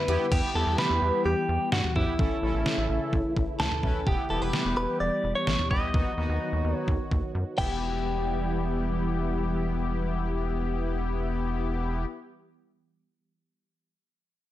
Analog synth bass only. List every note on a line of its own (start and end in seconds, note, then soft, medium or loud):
0.08 0.18 E2 loud
0.32 0.41 E2 loud
0.55 0.65 E2 loud
0.67 0.76 E2 loud
0.90 1.00 E2 loud
1.02 1.11 E2 loud
1.25 1.35 E2 loud
1.49 1.58 E2 loud
1.72 1.82 G2 loud
1.96 2.05 F#2 medium
2.19 2.29 A1 loud
2.43 2.52 A1 medium
2.54 2.64 A1 medium
2.78 2.87 A1 medium
2.89 2.99 A1 medium
3.13 3.22 A1 loud
3.37 3.46 A1 medium
3.60 3.69 C#2 medium
3.83 3.93 B1 medium
4.07 4.16 E1 loud
4.30 4.39 E1 loud
4.42 4.51 E1 medium
4.65 4.75 E1 medium
4.77 4.86 E1 medium
5.00 5.10 E1 loud
5.24 5.33 E1 loud
5.47 5.57 A1 medium
5.71 5.80 G1 medium
5.94 6.04 D#2 loud
6.18 6.27 D#2 loud
6.29 6.39 D#2 loud
6.53 6.62 D#2 medium
6.64 6.74 D#2 medium
6.88 6.97 D#2 loud
7.11 7.21 D#2 loud
7.35 7.44 F#2 medium
7.58 12.05 E1 medium